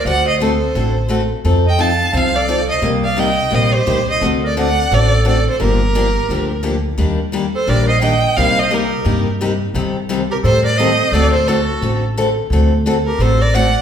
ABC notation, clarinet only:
X:1
M:4/4
L:1/8
Q:"Swing" 1/4=174
K:Dphr
V:1 name="Clarinet"
d c A4 z2 | z e f2 c A2 c | z d e2 c G2 c | z B d2 A2 A A |
G6 z2 | z3 A B c e2 | c c G3 z3 | z3 G A B c2 |
A A ^F3 z3 | z3 G A B d2 |]